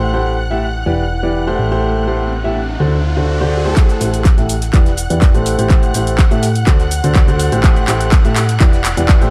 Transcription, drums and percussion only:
3.76 kick loud
3.76 clap soft
3.76 closed hi-hat medium
3.76 closed hi-hat soft
3.76 cabasa soft
3.89 closed hi-hat soft
3.89 cabasa soft
4.01 closed hi-hat medium
4.01 open hi-hat loud
4.01 cabasa medium
4.14 closed hi-hat medium
4.14 cabasa soft
4.25 kick loud
4.25 snare loud
4.25 clap soft
4.25 closed hi-hat medium
4.25 cabasa soft
4.38 snare soft
4.38 closed hi-hat soft
4.38 cabasa soft
4.49 closed hi-hat medium
4.49 open hi-hat loud
4.49 cabasa medium
4.61 snare soft
4.61 closed hi-hat medium
4.61 cabasa soft
4.73 kick loud
4.73 clap medium
4.73 closed hi-hat medium
4.73 cabasa soft
4.86 snare soft
4.86 closed hi-hat soft
4.86 cabasa soft
4.97 closed hi-hat medium
4.97 open hi-hat loud
4.97 cabasa medium
5.10 closed hi-hat medium
5.10 cabasa soft
5.21 kick loud
5.21 snare loud
5.21 clap medium
5.21 closed hi-hat medium
5.21 cabasa soft
5.34 closed hi-hat soft
5.34 cabasa soft
5.46 closed hi-hat medium
5.46 open hi-hat loud
5.46 cabasa medium
5.59 closed hi-hat medium
5.59 cabasa soft
5.70 kick loud
5.70 clap medium
5.70 closed hi-hat medium
5.70 cabasa soft
5.83 closed hi-hat soft
5.83 cabasa soft
5.94 closed hi-hat medium
5.94 open hi-hat loud
5.94 cabasa medium
6.07 closed hi-hat medium
6.07 cabasa soft
6.19 kick loud
6.19 snare loud
6.19 clap medium
6.19 closed hi-hat medium
6.19 cabasa soft
6.31 closed hi-hat soft
6.31 cabasa soft
6.43 closed hi-hat medium
6.43 open hi-hat loud
6.43 cabasa medium
6.55 closed hi-hat medium
6.55 cabasa soft
6.67 kick loud
6.67 clap medium
6.67 closed hi-hat medium
6.67 cabasa soft
6.79 snare soft
6.79 closed hi-hat soft
6.79 cabasa soft
6.91 closed hi-hat medium
6.91 open hi-hat loud
6.91 cabasa medium
7.04 closed hi-hat medium
7.04 cabasa soft
7.14 kick loud
7.14 snare loud
7.14 clap medium
7.14 closed hi-hat medium
7.14 cabasa soft
7.28 closed hi-hat soft
7.28 cabasa soft
7.39 closed hi-hat medium
7.39 open hi-hat loud
7.39 cabasa medium
7.52 closed hi-hat medium
7.52 cabasa soft
7.64 kick loud
7.64 clap medium
7.64 closed hi-hat soft
7.64 closed hi-hat medium
7.64 cabasa soft
7.76 closed hi-hat soft
7.76 cabasa soft
7.88 clap medium
7.88 closed hi-hat medium
7.88 open hi-hat loud
7.88 cabasa medium
8.01 closed hi-hat soft
8.01 cabasa soft
8.12 kick loud
8.12 snare loud
8.12 clap medium
8.12 closed hi-hat medium
8.12 cabasa soft
8.24 snare soft
8.24 closed hi-hat soft
8.24 cabasa soft
8.36 clap medium
8.36 closed hi-hat medium
8.36 open hi-hat loud
8.36 cabasa medium
8.49 snare soft
8.49 closed hi-hat medium
8.49 cabasa soft
8.60 kick loud
8.60 clap medium
8.60 closed hi-hat soft
8.60 closed hi-hat medium
8.60 cabasa soft
8.73 snare medium
8.73 closed hi-hat soft
8.73 cabasa soft
8.84 clap medium
8.84 closed hi-hat medium
8.84 open hi-hat loud
8.84 cabasa medium
8.97 closed hi-hat medium
8.97 cabasa soft
9.09 kick loud
9.09 snare loud
9.09 clap medium
9.09 closed hi-hat medium
9.09 cabasa soft
9.22 closed hi-hat soft
9.22 cabasa soft

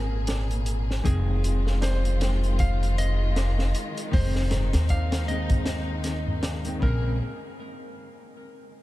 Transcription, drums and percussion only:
0.27 snare loud
0.27 closed hi-hat medium
0.27 tabla na medium
0.51 closed hi-hat soft
0.66 closed hi-hat medium
0.91 snare soft
1.05 kick loud
1.05 closed hi-hat medium
1.44 closed hi-hat medium
1.67 snare soft
1.81 snare loud
1.81 closed hi-hat medium
1.81 tabla na medium
2.05 closed hi-hat soft
2.21 snare loud
2.21 closed hi-hat medium
2.43 closed hi-hat soft
2.59 kick medium
2.59 closed hi-hat medium
2.83 closed hi-hat soft
2.98 closed hi-hat medium
3.36 snare loud
3.36 closed hi-hat medium
3.36 tabla na medium
3.59 snare medium
3.75 closed hi-hat medium
3.97 closed hi-hat soft
4.13 kick loud
4.13 open hi-hat medium
4.35 snare medium
4.51 snare medium
4.51 closed hi-hat medium
4.51 tabla ge medium
4.73 snare loud
4.73 closed hi-hat medium
4.89 kick medium
4.89 closed hi-hat medium
4.89 tabla na medium
5.12 snare loud
5.12 closed hi-hat medium
5.28 closed hi-hat soft
5.50 kick loud
5.50 closed hi-hat medium
5.50 tabla ge medium
5.66 snare loud
5.66 closed hi-hat medium
6.04 snare soft
6.04 closed hi-hat medium
6.27 tabla ge medium
6.43 snare loud
6.43 closed hi-hat medium
6.43 tabla na medium
6.65 closed hi-hat soft
6.82 kick loud

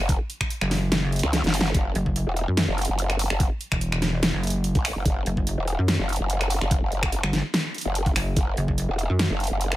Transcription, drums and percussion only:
0.09 kick loud
0.09 closed hi-hat medium
0.30 closed hi-hat medium
0.41 finger snap medium
0.41 kick medium
0.50 closed hi-hat medium
0.61 finger snap medium
0.71 snare medium
0.71 open hi-hat medium
0.92 snare loud
0.92 closed hi-hat medium
1.12 closed hi-hat soft
1.16 closed hi-hat medium
1.19 closed hi-hat medium
1.23 finger snap medium
1.33 snare medium
1.33 closed hi-hat medium
1.44 snare medium
1.44 closed hi-hat soft
1.54 open hi-hat loud
1.61 snare loud
1.74 kick loud
1.74 closed hi-hat medium
1.95 closed hi-hat medium
2.06 kick medium
2.16 closed hi-hat medium
2.37 closed hi-hat medium
2.57 snare loud
2.57 closed hi-hat medium
2.78 closed hi-hat medium
2.82 closed hi-hat medium
2.85 closed hi-hat medium
2.99 closed hi-hat medium
3.10 finger snap medium
3.10 closed hi-hat soft
3.19 open hi-hat loud
3.30 finger snap medium
3.40 kick loud
3.40 closed hi-hat medium
3.61 closed hi-hat medium
3.72 finger snap medium
3.72 kick medium
3.81 closed hi-hat medium
3.92 finger snap medium
4.02 snare medium
4.02 closed hi-hat medium
4.23 snare loud
4.23 closed hi-hat medium
4.43 closed hi-hat medium
4.47 closed hi-hat medium
4.50 closed hi-hat medium
4.64 closed hi-hat medium
4.75 kick loud
4.75 closed hi-hat soft
4.85 finger snap medium
4.85 open hi-hat medium
5.05 kick loud
5.05 closed hi-hat medium
5.26 closed hi-hat medium
5.37 kick medium
5.47 closed hi-hat medium
5.68 closed hi-hat medium
5.88 snare loud
5.88 closed hi-hat medium
6.09 closed hi-hat soft
6.13 closed hi-hat medium
6.16 closed hi-hat medium
6.30 closed hi-hat medium
6.41 finger snap medium
6.41 closed hi-hat soft
6.50 open hi-hat medium
6.61 finger snap medium
6.71 kick loud
6.71 closed hi-hat medium
6.92 closed hi-hat soft
7.03 finger snap medium
7.03 kick medium
7.12 closed hi-hat medium
7.23 finger snap medium
7.33 snare medium
7.33 closed hi-hat medium
7.54 snare loud
7.54 closed hi-hat medium
7.74 closed hi-hat soft
7.78 closed hi-hat medium
7.81 closed hi-hat medium
7.95 closed hi-hat medium
8.06 kick loud
8.06 closed hi-hat soft
8.16 finger snap medium
8.16 open hi-hat medium
8.37 kick loud
8.37 closed hi-hat medium
8.57 closed hi-hat medium
8.68 kick medium
8.78 closed hi-hat medium
8.99 closed hi-hat medium
9.19 snare loud
9.19 closed hi-hat medium
9.40 closed hi-hat soft
9.44 closed hi-hat medium
9.47 closed hi-hat medium
9.61 closed hi-hat medium
9.72 finger snap medium
9.72 closed hi-hat soft

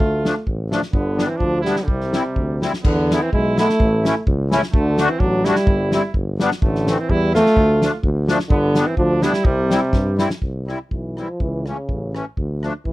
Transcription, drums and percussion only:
0.00 kick medium
0.25 snare medium
0.47 kick medium
0.72 snare medium
0.83 snare medium
0.93 kick medium
1.19 snare medium
1.40 kick medium
1.65 snare medium
1.76 snare medium
1.88 kick medium
2.01 snare soft
2.13 snare medium
2.36 kick medium
2.62 snare medium
2.74 snare soft
2.85 kick medium
2.85 crash medium
3.11 snare medium
3.11 hi-hat pedal soft
3.33 kick medium
3.58 snare medium
3.58 hi-hat pedal soft
3.69 snare medium
3.80 kick medium
4.05 snare medium
4.05 hi-hat pedal soft
4.27 kick medium
4.52 snare medium
4.52 hi-hat pedal soft
4.63 snare medium
4.74 kick loud
4.98 snare medium
4.98 hi-hat pedal soft
5.20 kick medium
5.45 snare medium
5.45 hi-hat pedal soft
5.55 snare medium
5.67 kick loud
5.92 snare medium
5.92 hi-hat pedal soft
6.14 kick medium
6.40 snare medium
6.40 hi-hat pedal soft
6.51 snare medium
6.62 kick medium
6.75 snare soft
6.87 snare medium
6.87 hi-hat pedal soft
7.09 kick medium
7.35 snare medium
7.35 hi-hat pedal soft
7.46 snare soft
7.57 kick medium
7.82 snare medium
7.82 hi-hat pedal soft
8.03 kick medium
8.28 snare medium
8.28 hi-hat pedal soft
8.39 snare medium
8.50 kick loud
8.75 snare medium
8.75 hi-hat pedal medium
8.97 kick medium
9.22 snare medium
9.22 hi-hat pedal soft
9.33 snare medium
9.45 kick medium
9.71 snare medium
9.71 hi-hat pedal soft
9.93 kick medium
9.93 snare soft
10.19 snare medium
10.19 hi-hat pedal soft
10.30 snare medium
10.42 kick medium
10.69 cross-stick medium
10.91 kick soft
11.17 cross-stick soft
11.40 kick medium
11.66 cross-stick soft
11.89 kick soft
12.15 cross-stick medium
12.37 kick medium
12.63 cross-stick medium
12.85 kick soft

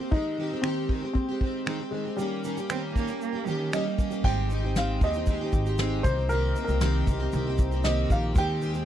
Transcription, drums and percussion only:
0.12 kick loud
0.64 finger snap medium
0.89 kick medium
1.15 kick medium
1.41 kick medium
1.67 finger snap loud
2.18 shaker medium
2.44 shaker medium
2.57 shaker soft
2.70 finger snap medium
2.70 shaker medium
2.96 kick medium
2.96 shaker soft
3.08 shaker soft
3.21 shaker medium
3.47 shaker soft
3.73 finger snap loud
3.73 shaker medium
3.98 kick medium
3.98 shaker medium
4.11 shaker soft
4.24 kick loud
4.24 crash medium
4.50 shaker medium
4.76 snare loud
4.76 shaker medium
5.01 kick medium
5.01 shaker soft
5.13 shaker medium
5.26 kick medium
5.26 shaker medium
5.52 kick medium
5.52 shaker soft
5.66 shaker soft
5.78 snare loud
5.78 shaker medium
6.04 kick loud
6.04 shaker medium
6.29 shaker medium
6.56 shaker medium
6.68 shaker soft
6.81 snare loud
6.81 shaker medium
7.07 kick medium
7.07 shaker soft
7.19 snare soft
7.32 shaker medium
7.58 kick medium
7.58 shaker medium
7.72 shaker soft
7.84 snare loud
7.84 shaker medium
8.10 kick medium
8.10 shaker medium
8.35 kick loud
8.35 shaker medium
8.62 shaker medium
8.74 shaker soft

